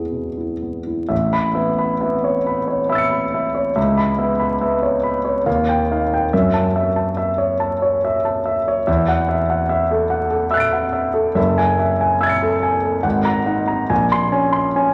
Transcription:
Already playing: E2 B3 E4 G#4
0.11 B2
0.37 E4
0.62 B3
0.87 E4
1.09 A1 E5
1.33 B5
1.55 B3 E5
1.78 B5
2.00 B3 E5
2.24 C#5
2.47 B5
2.68 C#5
2.89 E5 B5 E6
2.95 A6 C#7
3.10 B5
3.34 E5
3.55 C#5
3.76 C#2 E5
3.97 B5
4.18 B3 E5
4.39 B5
4.61 B3 E5
4.82 C#5
5.03 B5
5.25 C#5
5.46 D#2 F5
5.69 G5
5.91 D#4 F5
6.14 G5
6.33 F#2 E5
6.54 A5
6.76 E5
6.96 A5
7.17 E5
7.38 C#5
7.60 A5
7.82 C#5
8.05 E5
8.25 A5
8.45 E5
8.68 C#5
8.87 E2 E5
9.08 F#5
9.29 E5
9.50 F#5
9.69 E5
9.91 A4
10.10 F#5
10.31 A4
10.51 E5 E6 F#6
10.57 A6 D7
10.73 F#5
10.93 E5
11.14 A4
11.35 F#1 E5
11.58 G#5
11.79 E5
12.01 G#5
12.21 E5 E6 G#6
12.26 A6 C#7
12.42 A4
12.63 G#5
12.83 A4
13.03 G#1 F#5
13.25 A#5
13.46 D#4 F#5
13.68 A#5
13.89 A#1 G#5
14.12 C6
14.32 C#4 G#5
14.53 C6
14.76 C#4 G#5

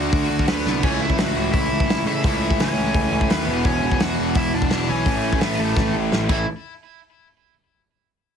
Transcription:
Already playing: D2 D3 A3 D4 F#4 F#5
0.13 D2, kick, open hi-hat
0.30 D2
0.39 kick
0.48 D2 B3 B4, snare, open hi-hat
0.66 C2 D3 A3 D4, snare
0.83 C#2 A2 E3 A3 C#4 C#5, kick, crash, splash
1.01 C#2 E4 E5
1.10 kick
1.18 C#2 F#4 F#5, snare, open hi-hat
1.37 C#2
1.53 C#2 E4 E5, kick, open hi-hat
1.71 C#2
1.80 kick
1.89 C#2, snare, open hi-hat
2.06 A2 C#3 E3 A3 E4 E5
2.23 C#2 A2 E3 A3 E4 E5, kick, open hi-hat
2.50 kick
2.60 C#2 C#4 C#5, snare, open hi-hat
2.78 C#2
2.94 C#2, kick, open hi-hat
3.12 C#2
3.21 kick
3.29 D#2 B3 B4, snare, open hi-hat
3.47 E1 E2 B2 E3
3.65 E1 C#4 C#5, kick, open hi-hat
3.83 E1
3.91 kick
4.00 E1 F#4 F#5, snare, open hi-hat
4.19 E1
4.35 E1 E4 E5, kick, open hi-hat
4.53 E1 D4 D5
4.62 kick
4.70 E1 E2 B2 E3, snare, open hi-hat
4.89 B1 C#4 C#5
5.05 A1 A2 E3 A3, kick, open hi-hat
5.32 C#4 C#5, kick
5.41 A1 B3 B4, snare, open hi-hat
5.59 A1 A3 A4
5.76 A1, kick, snare
5.93 A1
6.12 A1, snare
6.29 A1 A2 E3 A3 E4, kick, crash

